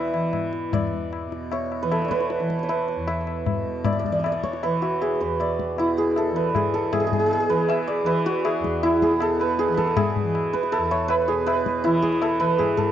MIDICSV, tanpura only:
0, 0, Header, 1, 2, 480
1, 0, Start_track
1, 0, Tempo, 388350
1, 907, Time_signature, 4, 2, 24, 8
1, 8096, Tempo, 377596
1, 16191, End_track
2, 0, Start_track
2, 0, Title_t, "Tanpura"
2, 0, Program_c, 0, 104
2, 0, Note_on_c, 0, 40, 62
2, 0, Note_on_c, 0, 47, 65
2, 0, Note_on_c, 0, 52, 58
2, 165, Note_off_c, 0, 52, 0
2, 165, Note_on_c, 0, 52, 60
2, 866, Note_off_c, 0, 40, 0
2, 871, Note_on_c, 0, 40, 58
2, 1567, Note_off_c, 0, 47, 0
2, 1572, Note_on_c, 0, 47, 60
2, 2268, Note_off_c, 0, 52, 0
2, 2268, Note_on_c, 0, 52, 70
2, 2966, Note_off_c, 0, 52, 0
2, 2966, Note_on_c, 0, 52, 61
2, 3656, Note_off_c, 0, 40, 0
2, 3661, Note_on_c, 0, 40, 62
2, 4350, Note_off_c, 0, 47, 0
2, 4355, Note_on_c, 0, 47, 60
2, 5056, Note_off_c, 0, 52, 0
2, 5056, Note_on_c, 0, 52, 60
2, 5747, Note_off_c, 0, 52, 0
2, 5747, Note_on_c, 0, 52, 56
2, 6429, Note_off_c, 0, 40, 0
2, 6434, Note_on_c, 0, 40, 58
2, 7115, Note_off_c, 0, 47, 0
2, 7120, Note_on_c, 0, 47, 57
2, 7801, Note_off_c, 0, 52, 0
2, 7801, Note_on_c, 0, 52, 57
2, 8588, Note_off_c, 0, 47, 0
2, 8588, Note_on_c, 0, 47, 58
2, 9294, Note_off_c, 0, 52, 0
2, 9294, Note_on_c, 0, 52, 66
2, 9988, Note_off_c, 0, 52, 0
2, 9988, Note_on_c, 0, 52, 77
2, 10691, Note_off_c, 0, 40, 0
2, 10696, Note_on_c, 0, 40, 68
2, 11386, Note_off_c, 0, 47, 0
2, 11386, Note_on_c, 0, 47, 68
2, 12073, Note_off_c, 0, 52, 0
2, 12078, Note_on_c, 0, 52, 62
2, 12770, Note_off_c, 0, 52, 0
2, 12770, Note_on_c, 0, 52, 64
2, 13466, Note_off_c, 0, 40, 0
2, 13471, Note_on_c, 0, 40, 71
2, 14151, Note_off_c, 0, 47, 0
2, 14156, Note_on_c, 0, 47, 76
2, 14841, Note_off_c, 0, 52, 0
2, 14841, Note_on_c, 0, 52, 76
2, 15522, Note_off_c, 0, 52, 0
2, 15522, Note_on_c, 0, 52, 69
2, 16191, Note_off_c, 0, 40, 0
2, 16191, Note_off_c, 0, 47, 0
2, 16191, Note_off_c, 0, 52, 0
2, 16191, End_track
0, 0, End_of_file